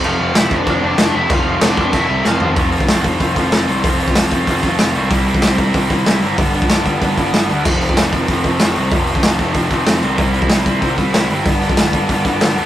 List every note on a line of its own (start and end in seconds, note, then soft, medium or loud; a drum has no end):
0.02 0.15 F1 loud
0.02 0.17 F2 medium
0.02 0.17 C3 medium
0.02 0.18 F3 medium
0.02 0.18 A3 loud
0.02 0.19 C4 loud
0.02 0.34 F4 loud
0.02 crash medium
0.06 0.38 F5 loud
0.17 0.30 F1 loud
0.17 0.34 F2 medium
0.17 0.33 C3 loud
0.17 0.34 F3 medium
0.17 0.33 A3 loud
0.17 0.33 C4 loud
0.33 0.45 F1 medium
0.33 0.48 F2 medium
0.33 0.48 C3 medium
0.33 0.49 F3 medium
0.33 0.50 A3 medium
0.33 0.50 C4 medium
0.33 snare loud
0.33 crash medium
0.37 0.51 E4 medium
0.37 0.53 E5 loud
0.49 0.62 F1 medium
0.49 0.66 F2 medium
0.49 0.65 C3 medium
0.49 0.66 F3 medium
0.49 0.65 A3 loud
0.49 0.65 C4 loud
0.49 kick loud
0.54 0.82 D4 medium
0.54 0.82 D5 loud
0.65 0.78 F1 medium
0.65 0.80 F2 medium
0.65 0.80 C3 medium
0.65 0.81 F3 loud
0.65 0.81 A3 loud
0.65 0.81 C4 loud
0.65 kick medium
0.65 crash medium
0.80 0.94 F1 medium
0.80 0.97 F2 medium
0.80 0.96 C3 medium
0.80 0.97 F3 loud
0.80 0.97 A3 loud
0.80 0.96 C4 loud
0.84 1.13 D4 medium
0.84 1.16 D5 medium
0.96 1.09 F1 loud
0.96 1.12 F2 medium
0.96 1.12 C3 medium
0.96 1.13 F3 medium
0.96 1.13 A3 loud
0.96 1.14 C4 loud
0.96 snare loud
0.96 crash medium
1.12 1.25 F1 medium
1.12 1.29 F2 medium
1.12 1.29 C3 medium
1.12 1.28 F3 medium
1.12 1.28 A3 medium
1.12 1.28 C4 medium
1.12 1.31 E5 loud
1.17 1.30 E4 medium
1.29 1.41 F1 loud
1.29 1.43 F2 medium
1.29 1.44 C3 medium
1.29 1.44 F3 medium
1.29 1.44 A3 medium
1.29 1.45 C4 loud
1.29 1.60 F4 medium
1.29 1.62 F5 medium
1.29 kick loud
1.29 crash medium
1.45 1.57 F1 medium
1.45 1.62 F2 medium
1.45 1.61 C3 medium
1.45 1.61 F3 medium
1.45 1.60 A3 loud
1.45 1.60 C4 medium
1.61 1.72 F1 medium
1.61 1.75 F2 medium
1.61 1.75 C3 medium
1.61 1.76 F3 medium
1.61 1.76 A3 medium
1.61 1.76 C4 medium
1.61 1.92 D4 medium
1.61 1.92 D5 loud
1.61 snare loud
1.61 crash medium
1.76 1.88 F1 medium
1.76 1.93 F2 medium
1.76 1.92 C3 medium
1.76 1.92 F3 medium
1.76 1.92 A3 loud
1.76 1.91 C4 loud
1.76 kick medium
1.92 2.04 F1 medium
1.92 2.07 F2 medium
1.92 2.07 C3 medium
1.92 2.08 F3 medium
1.92 2.08 A3 loud
1.92 2.08 C4 loud
1.92 2.23 E4 medium
1.92 2.25 E5 loud
1.92 kick loud
1.92 crash medium
2.08 2.20 C2 medium
2.08 2.24 F2 medium
2.08 2.23 C3 loud
2.08 2.23 F3 medium
2.08 2.22 A3 loud
2.08 2.22 C4 medium
2.23 2.36 F1 medium
2.23 2.38 F2 medium
2.23 2.38 C3 medium
2.23 2.39 F3 medium
2.23 2.39 A3 medium
2.23 2.39 C4 loud
2.23 2.48 F4 medium
2.23 2.47 F5 medium
2.23 snare medium
2.40 2.52 F1 medium
2.40 2.55 F2 medium
2.40 2.54 C3 medium
2.40 2.53 F3 medium
2.40 2.54 A3 medium
2.40 2.55 C4 medium
2.40 floor tom medium
2.55 2.84 F1 loud
2.55 2.71 F3 loud
2.55 2.71 A3 loud
2.55 2.71 C4 medium
2.55 2.70 F4 loud
2.55 kick loud
2.55 open hi-hat medium
2.71 2.85 F3 medium
2.71 2.87 A3 medium
2.71 2.87 C4 medium
2.71 2.87 F4 loud
2.71 open hi-hat medium
2.80 kick medium
2.86 3.16 F1 medium
2.86 3.03 F3 medium
2.86 3.03 A3 medium
2.86 3.03 C4 medium
2.86 3.02 F4 medium
2.86 snare loud
2.86 open hi-hat medium
3.03 3.17 F3 medium
3.03 3.18 A3 medium
3.03 3.19 C4 medium
3.03 3.19 F4 medium
3.03 kick medium
3.03 open hi-hat medium
3.19 3.34 F1 medium
3.19 3.35 F3 medium
3.19 3.34 A3 loud
3.19 3.35 C4 loud
3.19 3.34 F4 loud
3.19 kick medium
3.19 open hi-hat medium
3.35 3.50 F1 medium
3.35 3.50 F3 medium
3.35 3.50 A3 medium
3.35 3.52 C4 loud
3.35 3.51 F4 loud
3.35 kick medium
3.35 open hi-hat medium
3.51 3.66 F1 medium
3.51 3.67 F3 medium
3.51 3.67 A3 medium
3.51 3.68 C4 medium
3.51 3.66 F4 medium
3.51 snare loud
3.51 open hi-hat medium
3.67 3.82 C2 medium
3.67 3.81 F3 medium
3.67 3.82 A3 medium
3.67 3.83 C4 medium
3.67 3.82 F4 medium
3.67 open hi-hat medium
3.83 4.11 F1 loud
3.83 3.98 F3 medium
3.83 3.98 A3 medium
3.83 3.99 C4 medium
3.83 3.97 F4 medium
3.83 kick loud
3.83 open hi-hat medium
3.99 4.14 F3 medium
3.99 4.14 A3 medium
3.99 4.16 C4 medium
3.99 4.15 F4 medium
3.99 open hi-hat medium
4.08 kick medium
4.15 4.43 F1 medium
4.15 4.31 F3 medium
4.15 4.31 A3 medium
4.15 4.31 C4 medium
4.15 4.30 F4 medium
4.15 snare loud
4.15 open hi-hat medium
4.31 4.46 F3 medium
4.31 4.46 A3 medium
4.31 4.46 C4 medium
4.31 4.47 F4 loud
4.31 kick medium
4.31 open hi-hat medium
4.47 4.61 F1 medium
4.47 4.63 F3 medium
4.47 4.62 A3 loud
4.47 4.62 C4 medium
4.47 4.62 F4 loud
4.47 kick medium
4.47 open hi-hat medium
4.63 4.77 F1 loud
4.63 4.77 F3 medium
4.63 4.77 A3 medium
4.63 4.78 C4 medium
4.63 4.78 F4 medium
4.63 kick medium
4.63 open hi-hat medium
4.78 4.92 F1 loud
4.78 4.95 F3 medium
4.78 4.95 A3 medium
4.78 4.94 C4 medium
4.78 4.94 F4 medium
4.78 snare loud
4.78 open hi-hat medium
4.94 5.08 C2 medium
4.94 5.10 F3 medium
4.94 5.10 A3 medium
4.94 5.10 C4 medium
4.94 5.10 F4 medium
4.94 open hi-hat medium
5.11 5.38 C2 loud
5.11 5.26 C3 medium
5.11 5.27 G3 medium
5.11 5.25 C4 medium
5.11 5.25 E4 loud
5.11 kick loud
5.11 open hi-hat medium
5.26 5.41 C3 medium
5.26 5.42 G3 medium
5.26 5.42 C4 medium
5.26 5.42 E4 medium
5.26 open hi-hat medium
5.34 kick medium
5.42 5.70 C2 medium
5.42 5.57 C3 medium
5.42 5.58 G3 medium
5.42 5.57 C4 medium
5.42 5.56 E4 medium
5.42 snare loud
5.42 open hi-hat medium
5.58 5.72 C3 medium
5.58 5.73 G3 medium
5.58 5.73 C4 medium
5.58 5.73 E4 loud
5.58 kick medium
5.58 open hi-hat medium
5.74 5.88 C2 medium
5.74 5.89 C3 loud
5.74 5.89 G3 loud
5.74 5.88 C4 loud
5.74 5.88 E4 loud
5.74 kick loud
5.74 open hi-hat medium
5.89 6.04 C2 medium
5.89 6.04 C3 medium
5.89 6.05 G3 medium
5.89 6.05 C4 medium
5.89 6.05 E4 loud
5.89 kick medium
5.89 open hi-hat medium
6.06 6.20 C2 loud
6.06 6.22 C3 medium
6.06 6.22 G3 medium
6.06 6.22 C4 medium
6.06 6.21 E4 loud
6.06 snare loud
6.06 open hi-hat medium
6.21 6.36 G1 medium
6.21 6.37 C3 medium
6.21 6.37 G3 medium
6.21 6.38 C4 medium
6.21 6.37 E4 medium
6.21 open hi-hat medium
6.37 6.66 G1 medium
6.37 6.54 G2 medium
6.37 6.53 D3 medium
6.37 6.53 G3 medium
6.37 6.52 B3 medium
6.37 6.52 D4 medium
6.37 kick loud
6.37 open hi-hat medium
6.53 6.67 G2 medium
6.53 6.68 D3 medium
6.53 6.68 G3 medium
6.53 6.69 B3 medium
6.53 6.69 D4 loud
6.53 open hi-hat medium
6.62 kick medium
6.68 6.98 G1 medium
6.68 6.86 G2 medium
6.68 6.86 D3 medium
6.68 6.85 G3 medium
6.68 6.85 B3 medium
6.68 6.84 D4 loud
6.68 snare loud
6.68 open hi-hat medium
6.85 6.99 G2 medium
6.85 7.00 D3 medium
6.85 7.00 G3 medium
6.85 7.01 B3 medium
6.85 7.01 D4 loud
6.85 kick medium
6.85 open hi-hat medium
7.01 7.15 G1 medium
7.01 7.17 G2 medium
7.01 7.16 D3 loud
7.01 7.16 G3 medium
7.01 7.16 B3 loud
7.01 7.15 D4 loud
7.01 kick medium
7.01 open hi-hat medium
7.16 7.31 G1 medium
7.16 7.32 G2 medium
7.16 7.32 D3 medium
7.16 7.32 G3 medium
7.16 7.33 B3 medium
7.16 7.33 D4 loud
7.16 kick medium
7.16 open hi-hat medium
7.33 7.47 G1 loud
7.33 7.49 G2 medium
7.33 7.49 D3 medium
7.33 7.49 G3 loud
7.33 7.48 B3 medium
7.33 7.48 D4 medium
7.33 snare loud
7.33 open hi-hat medium
7.49 7.63 D2 medium
7.49 7.64 G2 medium
7.49 7.65 D3 medium
7.49 7.65 G3 medium
7.49 7.64 B3 medium
7.49 7.64 D4 medium
7.49 open hi-hat medium
7.64 7.93 F1 loud
7.64 7.82 F2 medium
7.64 7.81 C3 medium
7.64 7.81 F3 medium
7.64 7.81 A3 loud
7.64 7.80 C4 medium
7.64 kick loud
7.64 crash loud
7.81 7.96 F2 medium
7.81 7.95 C3 medium
7.81 7.96 F3 medium
7.81 7.97 A3 loud
7.81 7.97 C4 loud
7.81 open hi-hat medium
7.89 kick medium
7.96 8.25 F1 medium
7.96 8.13 F2 medium
7.96 8.12 C3 medium
7.96 8.12 F3 medium
7.96 8.11 A3 medium
7.96 8.11 C4 loud
7.96 snare loud
7.96 open hi-hat medium
8.11 8.27 F2 medium
8.11 8.27 C3 medium
8.11 8.28 F3 medium
8.11 8.29 A3 loud
8.11 8.30 C4 medium
8.11 kick medium
8.11 open hi-hat medium
8.28 8.42 F1 medium
8.28 8.45 F2 medium
8.28 8.44 C3 loud
8.28 8.44 F3 loud
8.28 8.43 A3 loud
8.28 8.44 C4 loud
8.28 kick loud
8.28 open hi-hat medium
8.44 8.58 F1 medium
8.44 8.60 F2 medium
8.44 8.60 C3 medium
8.44 8.60 F3 medium
8.44 8.61 A3 loud
8.44 8.62 C4 loud
8.44 kick medium
8.44 open hi-hat medium
8.60 8.74 F1 medium
8.60 8.77 F2 medium
8.60 8.76 C3 medium
8.60 8.76 F3 loud
8.60 8.76 A3 medium
8.60 8.76 C4 medium
8.60 snare loud
8.60 open hi-hat medium
8.76 8.91 C2 medium
8.76 8.91 F2 medium
8.76 8.91 C3 medium
8.76 8.92 F3 medium
8.76 8.92 A3 medium
8.76 8.93 C4 medium
8.76 open hi-hat medium
8.91 9.19 F1 medium
8.91 9.07 F2 medium
8.91 9.07 C3 medium
8.91 9.06 F3 medium
8.91 9.06 A3 medium
8.91 9.06 C4 loud
8.91 kick loud
8.91 open hi-hat medium
9.07 9.22 F2 medium
9.07 9.22 C3 medium
9.07 9.23 F3 medium
9.07 9.23 A3 medium
9.07 9.24 C4 loud
9.07 open hi-hat medium
9.15 kick medium
9.23 9.52 F1 medium
9.23 9.39 F2 medium
9.23 9.39 C3 medium
9.23 9.38 F3 medium
9.23 9.38 A3 medium
9.23 9.38 C4 medium
9.23 snare loud
9.23 open hi-hat medium
9.39 9.53 F2 medium
9.39 9.54 C3 medium
9.39 9.54 F3 medium
9.39 9.54 A3 medium
9.39 9.54 C4 medium
9.39 kick medium
9.39 open hi-hat medium
9.54 9.69 F1 medium
9.54 9.70 F2 medium
9.54 9.70 C3 medium
9.54 9.69 F3 loud
9.54 9.69 A3 loud
9.54 9.69 C4 medium
9.54 kick medium
9.54 open hi-hat medium
9.70 9.85 F1 medium
9.70 9.84 F2 medium
9.70 9.84 C3 medium
9.70 9.84 F3 medium
9.70 9.85 A3 loud
9.70 9.85 C4 loud
9.70 kick medium
9.70 open hi-hat medium
9.85 10.01 F1 loud
9.85 10.02 F2 medium
9.85 10.01 C3 medium
9.85 10.01 F3 medium
9.85 10.00 A3 medium
9.85 10.00 C4 medium
9.85 snare loud
9.85 open hi-hat medium
10.01 10.17 C2 medium
10.01 10.18 F2 medium
10.01 10.15 C3 medium
10.01 10.17 F3 medium
10.01 10.17 A3 medium
10.01 10.16 C4 loud
10.01 open hi-hat medium
10.16 10.46 C2 loud
10.16 10.33 C3 medium
10.16 10.34 G3 medium
10.16 10.32 C4 medium
10.16 10.32 E4 loud
10.16 kick loud
10.16 open hi-hat medium
10.33 10.47 C3 medium
10.33 10.49 G3 medium
10.33 10.48 C4 medium
10.33 10.49 E4 medium
10.33 open hi-hat medium
10.42 kick medium
10.49 10.78 C2 medium
10.49 10.65 C3 medium
10.49 10.65 G3 medium
10.49 10.64 C4 medium
10.49 10.64 E4 medium
10.49 snare loud
10.49 open hi-hat medium
10.65 10.79 C3 medium
10.65 10.80 G3 medium
10.65 10.80 C4 medium
10.65 10.80 E4 loud
10.65 kick medium
10.65 open hi-hat medium
10.81 10.96 C2 medium
10.81 10.97 C3 medium
10.81 10.97 G3 loud
10.81 10.96 C4 loud
10.81 10.96 E4 loud
10.81 kick medium
10.81 open hi-hat medium
10.97 11.12 C2 medium
10.97 11.12 C3 medium
10.97 11.12 G3 medium
10.97 11.13 C4 medium
10.97 11.13 E4 loud
10.97 kick medium
10.97 open hi-hat medium
11.13 11.28 C2 loud
11.13 11.28 C3 medium
11.13 11.28 G3 medium
11.13 11.27 C4 loud
11.13 11.28 E4 loud
11.13 snare loud
11.13 open hi-hat medium
11.29 11.44 G1 medium
11.29 11.45 C3 medium
11.29 11.45 G3 medium
11.29 11.44 C4 medium
11.29 11.44 E4 medium
11.29 open hi-hat medium
11.45 11.73 G1 medium
11.45 11.61 G2 medium
11.45 11.60 D3 medium
11.45 11.60 G3 medium
11.45 11.60 B3 medium
11.45 11.59 D4 loud
11.45 kick loud
11.45 open hi-hat medium
11.61 11.76 G2 medium
11.61 11.76 D3 medium
11.61 11.76 G3 medium
11.61 11.77 B3 medium
11.61 11.77 D4 loud
11.61 open hi-hat medium
11.69 kick medium
11.77 12.05 G1 medium
11.77 11.93 G2 medium
11.77 11.92 D3 medium
11.77 11.92 G3 medium
11.77 11.92 B3 loud
11.77 11.91 D4 medium
11.77 snare loud
11.77 open hi-hat medium
11.92 12.07 G2 medium
11.92 12.07 D3 medium
11.92 12.08 G3 medium
11.92 12.08 B3 medium
11.92 12.08 D4 loud
11.92 kick medium
11.92 open hi-hat medium
12.08 12.23 G1 medium
12.08 12.25 G2 medium
12.08 12.24 D3 medium
12.08 12.24 G3 medium
12.08 12.23 B3 medium
12.08 12.23 D4 loud
12.08 kick medium
12.08 open hi-hat medium
12.24 12.39 G1 medium
12.24 12.38 G2 medium
12.24 12.38 D3 medium
12.24 12.39 G3 medium
12.24 12.39 B3 medium
12.24 12.39 D4 medium
12.24 kick medium
12.24 open hi-hat medium
12.39 12.55 G1 medium
12.39 12.55 G2 medium
12.39 12.55 D3 medium
12.39 12.55 G3 medium
12.39 12.55 B3 medium
12.39 12.54 D4 medium
12.39 snare loud
12.39 open hi-hat medium
12.55 12.66 D2 medium
12.55 12.66 G2 medium
12.55 12.66 D3 medium
12.55 12.66 G3 medium
12.55 12.66 B3 medium
12.55 12.66 D4 medium
12.55 open hi-hat medium